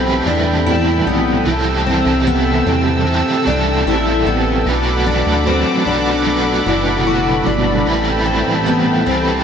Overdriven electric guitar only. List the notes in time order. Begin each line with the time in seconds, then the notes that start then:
Already playing: A2 E3 G3 C4 E4 B4
1.45 C3 E3 G3
1.50 C4 E4 A4
3.07 C3 E3 G3 C4 E4 A4
3.45 C4 E4 A4
3.50 G3
4.66 F#3 A3 D4 F#4 B4
5.84 D4 F#4 B4
5.89 A3
6.24 B2 F#3 A3
6.29 D4 F#4 B4
7.86 A2 E3 G3 C4 E4 B4
9.06 C4 E4 B4
9.11 G3